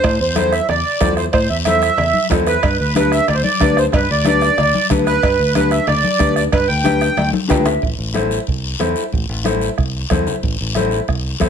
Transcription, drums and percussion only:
0.04 bombo low, bombo rim, cowbell, long guiro
0.36 bombo rim, cowbell, high conga, short guiro
0.52 bombo rim, short guiro
0.69 bombo rim, cowbell, low conga, long guiro
1.01 bombo low, bombo rim, cowbell, high conga, low timbale, short guiro
1.17 bombo rim, short guiro
1.33 bombo low, bombo rim, cowbell, long guiro
1.65 bombo rim, cowbell, high conga, short guiro
1.82 bombo rim, short guiro
1.97 bombo rim, cowbell, low conga, long guiro
2.14 high conga
2.30 bombo low, bombo rim, cowbell, high conga, low timbale, short guiro
2.47 bombo rim, short guiro
2.63 bombo low, bombo rim, cowbell, long guiro
2.95 bombo rim, cowbell, high conga, short guiro
3.12 bombo rim, short guiro
3.28 bombo rim, cowbell, low conga, long guiro
3.44 high conga
3.60 bombo low, bombo rim, cowbell, high conga, short guiro
3.77 bombo rim, short guiro
3.92 bombo low, bombo rim, cowbell, low conga, long guiro
4.25 bombo rim, cowbell, high conga, short guiro
4.42 bombo rim, short guiro
4.58 bombo rim, cowbell, low conga, long guiro
4.74 high conga
4.90 bombo low, bombo rim, cowbell, high conga, low conga, short guiro
5.07 bombo rim, short guiro
5.23 bombo low, bombo rim, cowbell, long guiro
5.55 bombo rim, cowbell, high conga, short guiro
5.71 bombo rim, short guiro
5.87 bombo rim, cowbell, low conga, long guiro
6.04 high conga
6.20 bombo low, bombo rim, cowbell, high conga, short guiro
6.36 bombo rim, short guiro
6.52 bombo low, bombo rim, cowbell, low conga, long guiro
6.85 bombo rim, cowbell, high conga, short guiro
7.01 bombo rim, short guiro
7.17 bombo rim, cowbell, high conga, long guiro
7.33 high conga
7.50 bombo low, bombo rim, cowbell, low conga, low timbale, short guiro
7.65 bombo rim, low conga, short guiro
7.82 bombo low, high conga, long guiro
8.14 bombo rim, high conga, short guiro
8.31 short guiro
8.47 bombo low, high conga, long guiro
8.79 bombo rim, high conga, short guiro
8.96 short guiro
9.12 bombo low, high conga, long guiro
9.45 bombo rim, high conga, short guiro
9.61 short guiro
9.78 bombo low, bombo rim, high conga, long guiro
10.10 bombo low, bombo rim, high conga, low conga, short guiro
10.27 low conga, short guiro
10.43 bombo low, high conga, long guiro
10.75 bombo rim, high conga, short guiro
10.91 short guiro
11.08 bombo low, bombo rim, high conga, long guiro
11.40 bombo low, bombo rim, high conga, short guiro

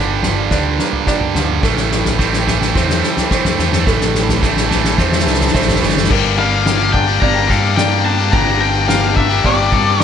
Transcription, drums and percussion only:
0.23 snare, floor tom, mid tom
0.51 kick, snare
0.79 snare
0.93 floor tom
1.07 kick, snare
1.21 floor tom, mid tom
1.35 snare
1.49 mid tom
1.63 kick, snare, floor tom, crash
1.77 snare
1.91 snare
2.05 snare, floor tom
2.19 kick, snare
2.33 snare
2.47 snare, floor tom, mid tom
2.61 snare
2.75 kick, snare
2.90 snare
3.03 snare
3.17 snare, floor tom
3.31 kick, snare
3.45 snare, floor tom, mid tom
3.59 snare
3.73 snare, mid tom
3.87 kick, snare, floor tom
4.01 snare
4.15 snare
4.29 snare, floor tom
4.42 kick, snare
4.57 snare
4.71 snare, floor tom
4.84 snare
4.98 kick, snare
5.12 snare
5.19 snare
5.27 snare
5.34 snare
5.41 snare, floor tom
5.47 snare
5.55 kick, snare
5.61 snare
5.68 snare, floor tom, mid tom
5.75 snare
5.83 snare, mid tom
5.89 snare
5.97 snare, mid tom
6.04 snare
6.11 kick, crash
6.38 ride
6.66 snare, ride
6.94 kick, ride
7.22 kick, ride
7.50 kick, snare, ride
7.77 snare, ride
8.05 ride
8.33 kick, ride
8.61 ride
8.89 snare, ride
9.17 kick, ride
9.44 kick, ride
9.72 kick, ride
10.00 snare, ride

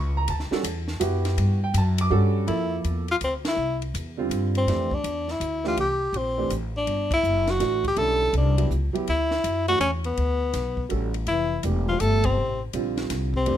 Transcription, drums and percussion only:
0.28 ride
0.40 snare
0.52 snare
0.64 hi-hat pedal, ride
0.88 snare
1.01 hi-hat pedal, ride
1.25 snare, ride
1.38 ride
1.74 hi-hat pedal, ride
1.98 ride
2.48 ride
2.84 hi-hat pedal, ride
3.08 ride
3.21 hi-hat pedal, ride
3.45 snare, ride
3.82 ride
3.95 hi-hat pedal, ride
4.31 hi-hat pedal, ride
4.55 ride
4.68 snare, ride
4.91 kick
5.04 hi-hat pedal, ride
5.28 snare
5.41 hi-hat pedal, ride
5.65 snare
5.77 ride
6.14 ride
6.50 hi-hat pedal, ride
6.87 ride
7.11 kick, ride
7.24 hi-hat pedal
7.47 snare, ride
7.60 snare, hi-hat pedal, ride
7.84 kick, ride
7.96 ride
8.34 ride
8.58 ride
8.71 hi-hat pedal
8.95 ride
9.08 ride
9.31 snare
9.44 hi-hat pedal, ride
9.68 ride
9.81 hi-hat pedal, ride
10.04 ride
10.17 ride
10.53 snare, hi-hat pedal, ride
10.77 kick
10.90 ride
11.14 ride
11.27 ride
11.63 hi-hat pedal, ride
12.00 hi-hat pedal, ride
12.24 kick, ride
12.73 hi-hat pedal, ride
12.97 snare, ride
13.10 snare, hi-hat pedal, ride
13.34 kick
13.46 ride

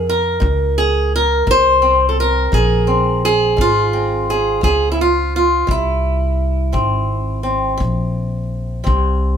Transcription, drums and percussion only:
0.42 kick
1.47 kick
2.53 kick
3.58 kick
4.63 kick
5.69 kick
6.74 kick
7.80 kick
8.87 kick

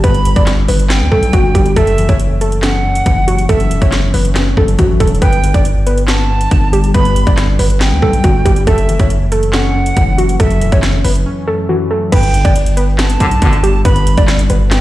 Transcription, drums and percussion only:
0.04 kick, closed hi-hat
0.14 closed hi-hat
0.25 closed hi-hat
0.36 kick, closed hi-hat
0.46 snare, clap, closed hi-hat
0.68 open hi-hat
0.79 closed hi-hat
0.89 snare, clap, closed hi-hat
1.12 kick
1.23 closed hi-hat
1.33 kick, closed hi-hat
1.55 kick, closed hi-hat
1.66 closed hi-hat
1.76 kick, closed hi-hat
1.87 closed hi-hat
1.98 closed hi-hat
2.09 kick, closed hi-hat
2.20 closed hi-hat
2.41 closed hi-hat
2.52 closed hi-hat
2.62 snare, clap, closed hi-hat
2.95 closed hi-hat
3.06 kick, closed hi-hat
3.28 closed hi-hat
3.38 closed hi-hat
3.49 kick, closed hi-hat
3.60 closed hi-hat
3.71 closed hi-hat
3.82 kick, closed hi-hat
3.92 snare, clap, closed hi-hat
4.14 open hi-hat
4.25 closed hi-hat
4.35 snare, clap, closed hi-hat
4.57 kick
4.68 closed hi-hat
4.79 kick, closed hi-hat
5.00 kick, closed hi-hat
5.07 closed hi-hat
5.15 closed hi-hat
5.22 kick, closed hi-hat
5.33 closed hi-hat
5.44 closed hi-hat
5.54 kick, closed hi-hat
5.65 closed hi-hat
5.87 closed hi-hat
5.98 closed hi-hat
6.08 snare, clap, closed hi-hat
6.41 closed hi-hat
6.51 kick, closed hi-hat
6.73 closed hi-hat
6.84 closed hi-hat
6.94 kick, closed hi-hat
7.05 closed hi-hat
7.16 closed hi-hat
7.27 kick, closed hi-hat
7.37 snare, clap, closed hi-hat
7.59 open hi-hat
7.70 closed hi-hat
7.80 snare, clap, closed hi-hat
8.02 kick
8.13 closed hi-hat
8.24 kick, closed hi-hat
8.46 kick, closed hi-hat
8.56 closed hi-hat
8.67 kick, closed hi-hat
8.78 closed hi-hat
8.89 closed hi-hat
8.99 kick, closed hi-hat
9.10 closed hi-hat
9.32 closed hi-hat
9.43 closed hi-hat
9.53 snare, clap, closed hi-hat
9.86 closed hi-hat
9.97 kick, closed hi-hat
10.18 closed hi-hat
10.29 closed hi-hat
10.40 kick, closed hi-hat
10.51 closed hi-hat
10.61 closed hi-hat
10.72 kick, closed hi-hat
10.82 snare, clap, closed hi-hat
11.04 open hi-hat
11.15 closed hi-hat
12.12 kick, closed hi-hat, crash
12.23 closed hi-hat
12.34 closed hi-hat
12.45 kick, closed hi-hat
12.56 closed hi-hat
12.66 closed hi-hat
12.77 closed hi-hat
12.98 snare, clap, closed hi-hat
13.10 closed hi-hat
13.20 kick, closed hi-hat
13.31 closed hi-hat
13.42 kick, closed hi-hat
13.53 closed hi-hat
13.64 closed hi-hat
13.85 kick, closed hi-hat
13.96 closed hi-hat
14.07 closed hi-hat
14.17 kick, closed hi-hat
14.27 snare, clap, closed hi-hat
14.39 closed hi-hat
14.50 closed hi-hat
14.71 snare, clap, closed hi-hat

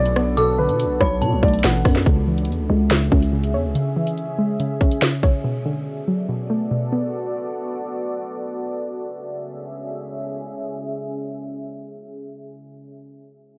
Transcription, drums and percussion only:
0.06 closed hi-hat
0.16 cross-stick
0.37 closed hi-hat
0.69 closed hi-hat
0.80 closed hi-hat
1.01 kick, cross-stick
1.22 closed hi-hat
1.43 kick, closed hi-hat
1.48 closed hi-hat
1.54 closed hi-hat
1.59 closed hi-hat
1.64 snare
1.85 kick, cross-stick, open hi-hat
1.96 snare
2.06 kick, closed hi-hat
2.38 closed hi-hat
2.45 closed hi-hat
2.52 closed hi-hat
2.91 snare, closed hi-hat
3.12 kick
3.22 closed hi-hat
3.44 closed hi-hat
3.75 closed hi-hat
4.07 closed hi-hat
4.18 closed hi-hat
4.60 closed hi-hat
4.81 kick, closed hi-hat
4.91 closed hi-hat
5.02 snare
5.23 kick, closed hi-hat

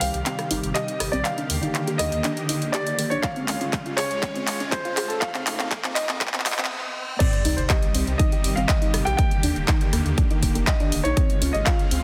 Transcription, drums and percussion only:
0.01 open hi-hat
0.14 closed hi-hat
0.26 clap, closed hi-hat
0.39 cross-stick, closed hi-hat
0.51 open hi-hat
0.63 closed hi-hat
0.75 clap, closed hi-hat
0.88 closed hi-hat
1.00 cross-stick, open hi-hat
1.13 closed hi-hat
1.25 clap, closed hi-hat
1.38 closed hi-hat
1.50 open hi-hat
1.63 closed hi-hat
1.75 clap, closed hi-hat
1.87 closed hi-hat
1.99 cross-stick, open hi-hat
2.12 closed hi-hat
2.24 clap, closed hi-hat
2.37 closed hi-hat
2.49 open hi-hat
2.62 closed hi-hat
2.74 clap, closed hi-hat
2.87 closed hi-hat
2.99 open hi-hat
3.11 closed hi-hat
3.23 kick, clap, closed hi-hat
3.36 closed hi-hat
3.48 clap, open hi-hat
3.61 closed hi-hat
3.73 kick, clap, closed hi-hat
3.86 closed hi-hat
3.98 clap, open hi-hat
4.11 closed hi-hat
4.23 kick, clap, closed hi-hat
4.36 closed hi-hat
4.47 clap, open hi-hat
4.60 closed hi-hat
4.72 kick, clap, closed hi-hat
4.85 closed hi-hat
4.97 clap, open hi-hat
5.10 closed hi-hat
5.22 kick, clap, closed hi-hat
5.35 clap, closed hi-hat
5.47 clap, open hi-hat
5.60 clap, closed hi-hat
5.71 kick, clap, closed hi-hat
5.84 clap, closed hi-hat
5.96 clap, open hi-hat
6.09 clap, closed hi-hat
6.21 kick, clap, closed hi-hat
6.27 clap
6.34 clap, closed hi-hat
6.40 clap
6.46 kick, clap, open hi-hat
6.52 clap
6.59 clap, closed hi-hat
6.65 clap
7.20 kick, closed hi-hat, crash
7.33 closed hi-hat
7.45 open hi-hat
7.58 closed hi-hat
7.70 kick, clap, closed hi-hat
7.83 closed hi-hat
7.95 open hi-hat
8.07 closed hi-hat
8.19 kick, closed hi-hat
8.32 closed hi-hat
8.44 open hi-hat
8.57 closed hi-hat
8.69 kick, clap, closed hi-hat
8.82 closed hi-hat
8.94 cross-stick, open hi-hat
9.07 closed hi-hat
9.19 kick, closed hi-hat
9.31 closed hi-hat
9.43 open hi-hat
9.56 closed hi-hat
9.68 kick, clap, closed hi-hat
9.81 closed hi-hat
9.93 cross-stick, open hi-hat
10.06 closed hi-hat
10.18 kick, closed hi-hat
10.31 closed hi-hat
10.43 kick, open hi-hat
10.55 closed hi-hat
10.67 kick, clap, closed hi-hat
10.80 closed hi-hat
10.92 open hi-hat
11.05 closed hi-hat
11.17 kick, closed hi-hat
11.30 closed hi-hat
11.42 open hi-hat
11.55 closed hi-hat
11.66 kick, clap, closed hi-hat
11.79 closed hi-hat
11.91 open hi-hat

